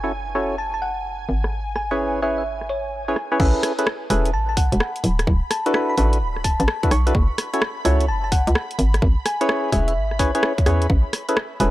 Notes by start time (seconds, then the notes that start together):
Already playing: F#1 G#5
0.04 C#4 E4 F#4 A4 C#5
0.35 C#4 E4 F#4 A4 C#5, open hi-hat
0.58 A5
0.74 A5
0.82 F#5, open hi-hat
1.29 G#1, open hi-hat
1.44 cross-stick
1.76 G#5, cross-stick, open hi-hat
1.91 C#4 E4 G#4 B4 C#5
2.22 C#4 E4 G#4 B4 C#5 E5, open hi-hat
2.38 E5
2.61 cross-stick
2.69 C#5, open hi-hat
3.08 C#4 E4 G#4 B4 C#5
3.16 cross-stick, open hi-hat
3.32 C#4 E4 G#4 B4 C#5
3.40 A1 C#4 E4 G#4 A4 B4 B5, kick, crash
3.63 cross-stick, open hi-hat
3.79 C#4 E4 G#4 A4 B4, closed hi-hat
3.87 cross-stick
4.10 E1 C#4 E4 G#4 A4 B4, open hi-hat
4.25 closed hi-hat
4.34 A1 A5
4.49 A5
4.57 F#5, kick, open hi-hat
4.72 E1, closed hi-hat
4.80 cross-stick
4.96 closed hi-hat
5.04 D1, open hi-hat
5.19 cross-stick, closed hi-hat
5.27 D1, kick
5.51 A5, cross-stick, open hi-hat
5.66 D4 E4 F#4 A4 B4, closed hi-hat
5.74 B5, cross-stick
5.90 B5
5.97 A1 D4 E4 F#4 A4 B4, open hi-hat
6.13 closed hi-hat
6.21 D1
6.36 cross-stick
6.44 A5, kick, open hi-hat
6.60 A1 A5, closed hi-hat
6.68 cross-stick
6.83 D4 E4 F#4 A4 B4, kick, closed hi-hat
6.91 B1 C#6, cross-stick, open hi-hat
7.07 D4 E4 F#4 A4 B4, closed hi-hat
7.15 F#1, kick
7.38 cross-stick, open hi-hat
7.54 C#4 E4 F#4 A4 C#5, closed hi-hat
7.62 cross-stick
7.85 C#2 C#4 E4 F#4 A4 C#5, open hi-hat
8.00 closed hi-hat
8.08 F#1 A5
8.24 A5
8.32 F#5, kick, open hi-hat
8.47 C#2, closed hi-hat
8.55 cross-stick
8.71 closed hi-hat
8.79 G#1, open hi-hat
8.94 cross-stick, closed hi-hat
9.02 G#1, kick
9.26 G#5, cross-stick, open hi-hat
9.41 C#4 E4 G#4 B4 C#5, closed hi-hat
9.49 cross-stick
9.72 E1 C#4 E4 G#4 B4 C#5 E5, kick, open hi-hat
9.88 E5, closed hi-hat
9.96 G#1
10.11 cross-stick
10.19 C#4 E4 G#4 B4 C#5, kick, open hi-hat
10.35 C#4 E4 G#4 B4 C#5, closed hi-hat
10.43 cross-stick
10.58 kick, closed hi-hat
10.66 E2 C#4 E4 G#4 B4 C#5, cross-stick, open hi-hat
10.82 closed hi-hat
10.90 A1 E5, kick
11.13 cross-stick, open hi-hat
11.29 C#4 E4 G#4 A4 B4, closed hi-hat
11.37 cross-stick
11.60 E1 C#4 E4 G#4 A4 B4, open hi-hat